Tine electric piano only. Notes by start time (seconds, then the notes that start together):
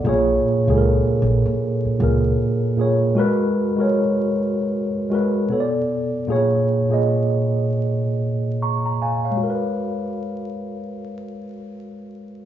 0.04 A#2 A#3 G#4
0.09 C#5
0.66 A#2 A#3 G#4
0.72 A4
0.78 A#4
1.98 A#2 A#3 G#4
2.03 A#4
2.76 A#2 A#3 G#4
2.81 C#5
3.15 G#3 F#4 A#4
3.19 B4
3.76 G#3 F#4 A#4
3.81 C#5
5.10 G#3 F#4 A#4
5.15 B4
5.49 B2 B3 A4
5.53 C#5
5.60 D5
6.27 A#2 A#3 G#4
6.32 C#5
6.89 A#2 A#3 G#4
6.93 D#5
8.62 A#5 C#6
8.86 A#5
9.02 F5 G#5
9.25 C#5 F5
9.31 G#3
9.37 F#4
9.44 A#4
9.50 B4